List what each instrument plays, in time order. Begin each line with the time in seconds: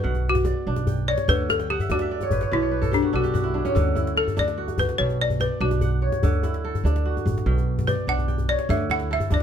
Already playing: kora B3 D4 E4 F#4 A4, balafon B4
0.03 upright bass B1, kora B2 F#5
0.14 djembe tone
0.25 djembe slap
0.29 balafon F#4
0.35 djembe slap, djembe bass
0.45 kora D5, djembe tone
0.67 upright bass B1, kora D4
0.76 djembe slap, djembe tone
0.87 kora G5, djembe bass
1.08 kora C#5, balafon D5
1.18 djembe slap, djembe tone
1.28 upright bass D2, kora D3, balafon B4, djembe bass
1.50 balafon A4, djembe slap, djembe tone
1.60 kora G5, djembe slap
1.70 balafon G4, kora F#5, djembe slap
1.80 kora E5, djembe bass
1.90 upright bass D2, kora D4 D5, balafon F#4, djembe slap, djembe tone
1.99 kora E5, djembe slap
2.11 kora D5
2.21 kora C#5, djembe tone
2.31 upright bass A1, kora B4, djembe bass
2.41 kora C#5, djembe slap
2.51 upright bass B1, kora B2 D5, balafon E4
2.62 kora C#5
2.72 kora B4, djembe slap
2.82 kora A4, djembe slap, djembe bass
2.92 balafon D4, kora G4, djembe tone
3.02 kora F#4
3.13 upright bass B1, kora D4 A4, balafon F#4
3.23 kora G4, djembe slap, djembe tone
3.34 kora F#4, djembe bass
3.44 kora E4
3.54 kora D4
3.65 kora C#4, djembe slap, djembe tone
3.75 upright bass D2, kora D3, djembe bass
3.95 kora E4, djembe slap, djembe tone
4.07 djembe slap
4.16 kora A4, balafon A4, djembe slap
4.28 djembe bass
4.37 upright bass D2, kora D4, balafon D5, djembe slap, djembe tone
4.48 djembe slap
4.58 kora F#4
4.68 djembe tone
4.78 upright bass C#2, balafon B4, djembe bass
4.89 djembe slap
4.98 upright bass B1, kora B2 G5, balafon C#5
5.09 djembe tone
5.19 balafon D5, djembe slap
5.30 djembe bass
5.40 balafon B4, kora D5, djembe tone
5.60 upright bass B1, kora D4, balafon F#4
5.71 djembe slap, djembe tone
5.81 kora F#5, djembe bass
6.02 kora C#5
6.12 djembe slap, djembe tone
6.23 upright bass D2, kora D3, djembe bass
6.43 kora E4, djembe tone
6.54 djembe slap
6.64 kora A4
6.75 djembe bass
6.84 upright bass D2, kora D4, djembe slap, djembe tone
6.96 djembe slap
7.05 kora F#4, djembe slap
7.17 djembe slap, djembe tone
7.26 upright bass A1, djembe bass
7.38 djembe slap
7.46 upright bass B1, kora B2 G5
7.58 djembe tone
7.79 djembe slap, djembe bass
7.87 balafon B4, kora D5, djembe tone
7.99 djembe slap
8.07 upright bass B1, kora D4, balafon F#5
8.18 djembe bass
8.28 kora G5, djembe bass
8.38 djembe bass
8.49 kora C#5, balafon D5, djembe slap
8.59 djembe slap
8.69 upright bass D2, kora D3, balafon E5, djembe bass
8.90 kora E4, balafon F#5, djembe slap, djembe tone
9.00 djembe slap
9.10 kora A4, balafon E5, djembe slap
9.20 djembe bass
9.30 upright bass D2, kora D4, balafon D5, djembe slap, djembe tone